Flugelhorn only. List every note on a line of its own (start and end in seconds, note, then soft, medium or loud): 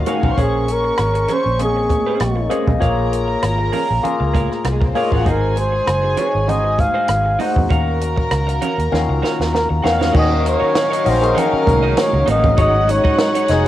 0.41 0.73 G#4 medium
0.72 1.35 A#4 medium
1.33 1.62 C5 medium
1.64 2.49 G#4 medium
5.29 5.60 A#4 medium
5.58 6.20 C5 medium
6.19 6.51 C#5 medium
6.49 6.81 D#5 medium
6.80 7.40 F5 medium
7.42 7.69 F#5 medium
9.55 9.69 A#4 medium
9.87 10.14 F5 medium
10.17 10.44 D#5 medium
10.48 11.11 C#5 medium
11.09 11.41 C5 medium
11.39 11.99 A#4 medium
12.00 12.27 C#5 medium
12.30 12.57 D#5 medium
12.61 12.92 D#5 loud
12.91 13.53 C#5 medium
13.52 13.68 G#4 medium